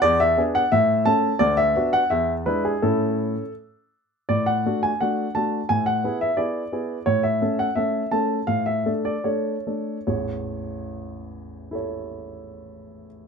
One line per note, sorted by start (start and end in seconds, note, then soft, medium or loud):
0.02 0.36 E2 medium
0.02 0.20 D5 loud
0.20 0.41 E5 medium
0.38 0.62 B3 soft
0.38 0.62 D4 soft
0.38 0.62 G#4 medium
0.55 0.72 F#5 medium
0.72 1.05 A2 medium
0.72 1.06 E5 medium
1.05 1.31 A3 soft
1.05 1.31 C#4 soft
1.05 1.31 A4 soft
1.05 1.40 A5 medium
1.39 1.74 D2 medium
1.39 1.57 D5 medium
1.57 1.89 E5 medium
1.76 2.01 B3 soft
1.76 2.01 D4 soft
1.76 2.01 F#4 soft
1.93 2.10 F#5 medium
2.10 2.45 E2 medium
2.10 2.32 E5 medium
2.46 2.72 G#3 soft
2.46 2.73 D4 soft
2.46 2.73 E4 soft
2.46 2.64 B4 medium
2.65 2.83 G#4 medium
2.82 3.34 A2 medium
2.82 3.41 C#4 soft
2.82 3.41 E4 soft
2.82 3.52 A4 medium
4.29 4.63 A2 soft
4.29 4.46 D5 medium
4.46 4.81 F#5 medium
4.66 4.90 A3 soft
4.66 4.90 D4 soft
4.66 4.91 F#4 soft
4.83 5.00 G#5 medium
5.01 5.25 A3 soft
5.01 5.26 D4 soft
5.01 5.26 F#4 soft
5.01 5.31 F#5 medium
5.35 5.60 A3 soft
5.35 5.60 D4 soft
5.35 5.60 F#4 soft
5.35 5.65 A5 medium
5.69 6.02 A2 soft
5.69 5.86 G#5 medium
5.86 6.17 F#5 medium
6.04 6.28 B3 soft
6.04 6.29 E4 soft
6.04 6.29 G#4 soft
6.21 6.38 E5 medium
6.37 6.62 B3 soft
6.37 6.62 E4 soft
6.37 6.62 G#4 soft
6.37 7.06 D5 medium
6.72 6.97 B3 soft
6.72 6.97 E4 soft
6.72 6.97 G#4 soft
7.06 7.40 A2 soft
7.06 7.23 C#5 medium
7.23 7.58 E5 medium
7.42 7.66 A3 soft
7.42 7.67 C#4 soft
7.42 7.67 A4 soft
7.59 7.76 F#5 medium
7.75 8.02 A3 soft
7.75 8.02 C#4 soft
7.75 8.02 A4 soft
7.75 8.11 E5 medium
8.11 8.38 A3 soft
8.11 8.38 C#4 soft
8.11 8.39 A4 soft
8.11 8.44 A5 medium
8.47 8.85 A2 soft
8.47 8.66 F5 medium
8.66 8.89 E5 medium
8.86 9.14 A3 soft
8.86 9.14 D4 soft
8.86 9.14 A4 soft
9.05 9.25 D5 medium
9.24 9.55 A3 soft
9.24 9.55 D4 soft
9.24 9.55 A4 soft
9.24 10.05 C#5 soft
9.67 9.96 A3 soft
9.67 9.96 D4 soft
9.67 9.97 A4 soft
10.07 13.06 A1 soft
10.07 13.06 E2 soft
10.07 11.73 C#5 soft
11.71 13.28 E4 soft
11.71 13.28 A4 soft
11.71 13.28 C#5 soft